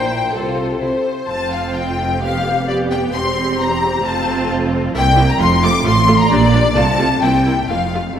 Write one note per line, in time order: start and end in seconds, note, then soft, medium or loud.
0.00 0.33 A#1 medium
0.00 0.34 A#2 medium
0.00 0.11 D4 medium
0.00 0.34 A#4 medium
0.00 0.32 C5 medium
0.00 0.32 G5 loud
0.10 0.18 E4 medium
0.33 0.79 C2 medium
0.33 0.81 C3 medium
0.33 0.80 F4 medium
0.33 0.81 A4 medium
0.33 1.04 A4 medium
0.33 0.78 C5 medium
0.80 0.89 C2 medium
0.80 0.90 C3 medium
0.80 0.88 E4 soft
0.80 1.08 G4 soft
0.80 1.24 C5 medium
1.27 3.09 F1 medium
1.27 3.09 F2 medium
1.27 2.17 C4 medium
1.27 2.17 F4 medium
1.27 1.51 A5 medium
1.27 1.51 A5 loud
1.51 1.75 F5 medium
1.74 2.19 G5 medium
1.74 2.21 G5 medium
2.20 2.66 B3 medium
2.20 2.66 G4 medium
2.20 2.67 F5 medium
2.20 2.66 F5 loud
2.67 3.12 B3 medium
2.67 3.12 G4 medium
2.67 2.75 D5 medium
2.67 2.76 D5 medium
2.91 3.13 G5 medium
2.91 2.99 G5 loud
3.13 4.02 E1 medium
3.13 4.02 E2 medium
3.13 4.02 C4 medium
3.13 4.02 G4 medium
3.13 3.57 C6 loud
3.13 3.58 C6 medium
3.59 4.04 A#5 loud
3.59 4.04 A#5 medium
4.03 4.93 F1 medium
4.03 4.94 F2 medium
4.03 4.93 C4 medium
4.03 4.95 F4 medium
4.03 4.50 A5 loud
4.03 4.49 A5 medium
4.94 5.35 C2 loud
4.94 5.02 A#3 medium
4.94 5.02 E4 medium
4.94 5.27 G5 loud
5.16 5.25 A#3 medium
5.16 5.24 E4 medium
5.29 5.40 A#5 loud
5.29 5.40 A#5 medium
5.39 5.80 F1 loud
5.39 5.81 F2 loud
5.39 5.48 A3 medium
5.39 5.48 F4 medium
5.39 5.63 C6 loud
5.39 5.49 C6 loud
5.62 5.71 A3 medium
5.62 5.71 F4 medium
5.62 5.85 D6 loud
5.84 6.25 A1 loud
5.84 6.26 A2 loud
5.84 5.93 A3 medium
5.84 5.94 F4 medium
5.84 6.18 C6 loud
5.84 6.20 C6 loud
6.07 6.15 A3 medium
6.07 6.15 F4 medium
6.18 6.30 A#5 loud
6.18 6.31 A#5 medium
6.29 6.71 A#1 loud
6.29 6.71 A#2 loud
6.29 6.39 G3 medium
6.29 6.39 D4 medium
6.29 6.75 D5 loud
6.29 6.77 D5 loud
6.54 6.62 G3 medium
6.54 6.62 D4 medium
6.75 7.16 C2 loud
6.75 7.16 C3 loud
6.75 6.84 A3 medium
6.75 6.84 F4 medium
6.75 7.22 A5 loud
6.99 7.07 A3 medium
6.99 7.07 F4 medium
7.21 7.63 C2 medium
7.21 7.63 C3 medium
7.21 7.30 A#3 medium
7.21 7.30 E4 medium
7.21 7.68 G5 loud
7.21 7.68 G5 medium
7.45 7.53 A#3 medium
7.45 7.53 E4 medium
7.68 8.10 F1 medium
7.68 8.10 F2 medium
7.68 7.78 A3 medium
7.68 7.78 F4 medium
7.68 8.15 F5 medium
7.68 8.16 F5 medium
7.94 8.02 A3 medium
7.94 8.02 F4 medium
8.15 8.20 F1 medium
8.15 8.20 F2 medium
8.15 8.20 A2 medium
8.15 8.20 A3 medium
8.15 8.20 A4 medium